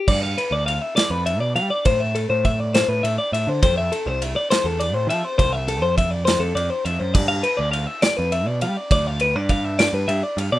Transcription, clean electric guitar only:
0.08 0.23 D5 medium
0.23 0.38 F5 medium
0.38 0.52 B4 medium
0.52 0.66 D5 medium
0.66 0.82 F5 medium
0.82 0.96 E5 medium
0.96 1.11 D5 medium
1.11 1.26 B4 medium
1.26 1.40 E5 medium
1.40 1.55 D5 medium
1.56 1.70 F5 medium
1.70 1.85 D5 medium
1.86 2.00 C5 medium
2.00 2.15 E5 medium
2.15 2.29 A4 medium
2.30 2.44 C5 medium
2.45 2.60 E5 medium
2.60 2.74 D5 medium
2.74 2.89 C5 medium
2.89 3.04 B4 medium
3.03 3.18 E5 medium
3.18 3.33 D5 medium
3.33 3.49 E5 medium
3.49 3.61 C5 medium
3.63 3.77 C5 medium
3.78 3.92 E5 medium
3.92 4.07 A4 medium
4.07 4.22 C5 medium
4.22 4.36 E5 medium
4.36 4.50 D5 medium
4.51 4.65 C5 medium
4.66 4.80 A4 medium
4.80 4.94 D5 medium
4.94 5.09 C5 medium
5.10 5.25 E5 medium
5.25 5.37 C5 medium
5.38 5.53 C5 loud
5.53 5.68 E5 medium
5.68 5.83 A4 medium
5.82 5.97 C5 medium
5.98 6.11 E5 medium
6.11 6.25 D5 medium
6.25 6.41 C5 medium
6.40 6.56 A4 medium
6.55 6.70 D5 medium
6.70 6.85 C5 medium
6.85 7.00 E5 medium
7.00 7.14 C5 medium
7.14 7.28 D5 medium
7.28 7.44 F5 medium
7.43 7.59 B4 medium
7.57 7.71 D5 medium
7.72 7.87 F5 medium
7.87 8.03 E5 medium
8.02 8.17 D5 medium
8.17 8.32 B4 medium
8.32 8.47 E5 medium
8.47 8.62 D5 medium
8.62 8.77 F5 medium
8.77 8.91 D5 medium
8.92 9.07 D5 medium
9.07 9.21 F5 medium
9.21 9.36 B4 medium
9.36 9.50 D5 medium
9.50 9.65 F5 medium
9.65 9.79 E5 medium
9.79 9.94 D5 medium
9.94 10.09 B4 medium
10.08 10.23 E5 medium
10.23 10.38 D5 medium
10.38 10.52 F5 medium
10.52 10.59 D5 medium

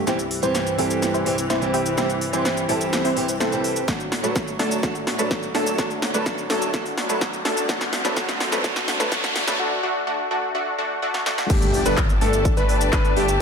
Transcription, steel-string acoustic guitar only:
0.07 0.17 E3 medium
0.07 0.17 G3 medium
0.07 0.17 C4 medium
0.07 0.17 G4 medium
0.42 0.75 E3 medium
0.42 0.76 G3 medium
0.42 0.76 C4 medium
0.42 0.76 G4 medium
0.78 1.23 E3 medium
0.78 1.23 G3 medium
0.78 1.23 C4 medium
0.78 1.24 G4 medium
1.25 1.36 E3 medium
1.25 1.36 G3 medium
1.25 1.36 C4 medium
1.25 1.36 G4 medium
1.61 1.94 E3 medium
1.61 1.95 G3 medium
1.61 1.95 C4 medium
1.61 1.95 G4 medium
1.97 2.07 E3 medium
1.97 2.07 G3 medium
1.97 2.08 C4 medium
1.97 2.08 G4 medium
2.33 2.66 E3 medium
2.33 2.66 G3 medium
2.33 2.66 C4 medium
2.33 2.66 G4 medium
2.68 3.13 E3 medium
2.68 3.14 G3 medium
2.68 3.14 C4 medium
2.68 3.14 G4 medium
3.16 3.26 E3 medium
3.16 3.27 G3 medium
3.16 3.27 C4 medium
3.16 3.27 G4 medium
3.52 3.85 E3 medium
3.52 3.85 G3 medium
3.52 3.85 C4 medium
3.52 3.85 G4 medium
3.87 3.98 F#3 medium
3.87 3.98 A3 medium
3.87 3.98 D4 medium
3.87 3.98 A4 medium
4.23 4.56 F#3 medium
4.23 4.56 A3 medium
4.23 4.57 D4 medium
4.23 4.57 A4 medium
4.59 4.81 F#3 medium
4.59 4.81 A3 medium
4.59 4.81 D4 medium
4.59 4.82 A4 medium
4.83 4.93 F#3 medium
4.83 4.93 A3 soft
4.83 4.93 D4 medium
4.83 4.94 A4 medium
5.18 5.52 F#3 medium
5.18 5.52 A3 medium
5.18 5.52 D4 medium
5.18 5.52 A4 medium
5.54 5.76 F#3 medium
5.54 5.77 A3 medium
5.54 5.77 D4 medium
5.54 5.77 A4 medium
5.78 5.88 F#3 medium
5.78 5.88 A3 medium
5.78 5.89 D4 medium
5.78 5.89 A4 medium
6.14 6.47 F#3 medium
6.14 6.47 A3 medium
6.14 6.47 D4 medium
6.14 6.47 A4 medium
6.49 6.72 F#3 medium
6.49 6.72 A3 medium
6.49 6.72 D4 medium
6.49 6.72 A4 medium
6.73 6.83 F#3 medium
6.73 6.84 A3 medium
6.73 6.84 D4 medium
6.73 6.84 A4 medium
7.09 7.42 F#3 medium
7.09 7.42 A3 medium
7.09 7.42 D4 medium
7.09 7.43 A4 medium
7.45 7.67 F#3 medium
7.45 7.67 A3 medium
7.45 7.67 D4 medium
7.45 7.67 A4 medium
7.68 7.79 F#3 medium
7.68 7.79 A3 medium
7.68 7.79 D4 medium
7.68 7.79 A4 medium
8.04 8.14 F#3 medium
8.04 8.15 A3 medium
8.04 8.15 D4 medium
8.04 8.15 A4 medium
8.16 8.26 F#3 medium
8.16 8.26 A3 medium
8.16 8.27 D4 medium
8.16 8.27 A4 medium
8.52 8.62 F#3 medium
8.52 8.62 A3 medium
8.52 8.62 D4 medium
8.52 8.63 A4 medium
8.64 8.74 F#3 medium
8.64 8.74 A3 medium
8.64 8.74 D4 medium
8.64 8.75 A4 medium
8.99 9.10 F#3 medium
8.99 9.10 A3 medium
8.99 9.10 D4 medium
8.99 9.10 A4 medium
9.11 9.22 F#3 medium
9.11 9.22 A3 medium
9.11 9.22 D4 medium
9.11 9.22 A4 medium
9.47 9.57 F#3 medium
9.47 9.57 A3 medium
9.47 9.58 D4 medium
9.47 9.58 A4 loud

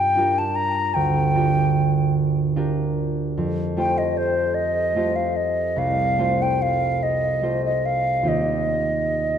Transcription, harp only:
0.00 2.51 G2 soft
0.00 0.15 D4 soft
0.00 0.16 F4 soft
0.00 0.16 G4 soft
0.00 0.17 A#4 soft
0.15 1.34 D4 soft
0.15 1.35 F4 soft
0.15 1.35 G4 soft
0.15 1.35 A#4 soft
0.95 3.40 D2 soft
1.35 2.55 D4 soft
1.35 2.55 F4 soft
1.35 2.55 G4 soft
1.35 2.56 A#4 soft
2.56 3.41 D4 soft
2.56 3.76 F4 soft
2.56 3.77 G4 soft
2.56 3.41 A#4 soft
3.38 7.28 F2 soft
3.77 4.94 A3 soft
3.77 4.95 F4 soft
3.77 4.95 G4 soft
3.77 4.96 C5 soft
4.95 6.17 A3 soft
4.95 6.17 F4 soft
4.95 6.18 G4 soft
4.95 6.18 C5 soft
5.76 8.31 C2 soft
6.18 7.41 A3 soft
6.18 7.42 F4 soft
6.18 7.42 G4 soft
6.18 7.42 C5 soft
7.42 8.31 A3 soft
7.42 8.24 F4 soft
7.42 8.24 G4 soft
7.42 8.32 C5 soft
8.23 9.38 D#2 soft
8.23 9.38 A#3 soft
8.23 9.38 F4 soft
8.23 9.38 G4 soft
8.23 9.38 D5 soft

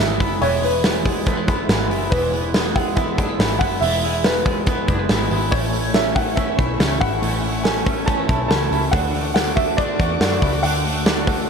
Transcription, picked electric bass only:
0.00 0.20 G#1 medium
0.20 0.39 F#1 medium
0.42 1.48 E1 medium
1.48 1.66 F#1 medium
1.69 1.91 G#1 loud
1.91 2.09 F#1 medium
2.12 3.18 E1 loud
3.18 3.36 F#1 medium
3.39 3.61 G#1 loud
3.61 3.79 F#1 loud
3.82 4.84 E1 loud
4.88 5.07 F#1 medium
5.09 5.28 G#1 medium
5.31 5.49 G#1 medium
5.52 6.55 A1 loud
6.59 6.77 B1 medium
6.80 6.98 C#2 medium
7.01 7.20 G#1 loud
7.22 8.25 A1 loud
8.29 8.47 B1 medium
8.50 8.68 C#2 medium
8.71 8.89 C#2 medium
8.93 9.95 D2 loud
10.00 10.18 E2 medium
10.21 10.39 F#2 loud
10.42 10.60 C#2 loud
10.64 11.49 D2 medium

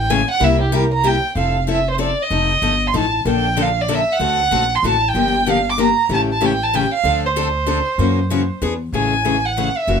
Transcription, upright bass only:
0.00 0.22 A1 medium
0.40 1.16 C2 medium
1.35 2.11 F1 medium
2.30 2.56 F1 medium
2.62 2.89 G1 medium
2.94 3.20 A1 medium
3.25 4.01 A#1 medium
4.19 4.45 D2 medium
4.51 4.78 A#1 medium
4.83 5.10 A1 medium
5.14 5.90 G1 medium
6.09 6.85 A1 medium
7.04 7.79 D2 medium
7.98 8.49 F#2 medium
8.62 8.87 E2 medium
8.92 9.69 A1 medium
9.87 10.00 F#1 medium

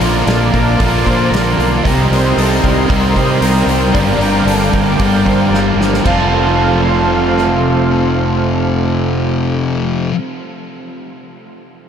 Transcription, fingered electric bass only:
0.00 0.23 A#1 medium
0.27 0.50 A#1 medium
0.54 0.77 A#1 medium
0.80 1.03 A#1 medium
1.06 1.29 A#2 medium
1.31 1.54 A#1 medium
1.58 1.81 B1 medium
1.85 2.08 C2 medium
2.11 2.34 C2 medium
2.37 2.60 C2 medium
2.64 2.87 C2 medium
2.90 3.13 C2 medium
3.16 3.39 C3 medium
3.41 3.65 C2 medium
3.66 3.90 C2 medium
3.95 4.18 G1 medium
4.18 4.43 G1 medium
4.45 4.69 G1 medium
4.73 4.97 G1 medium
4.99 5.23 G1 medium
5.26 5.49 G2 medium
5.50 5.74 G1 medium
5.76 6.00 G1 medium
6.05 10.08 F1 medium

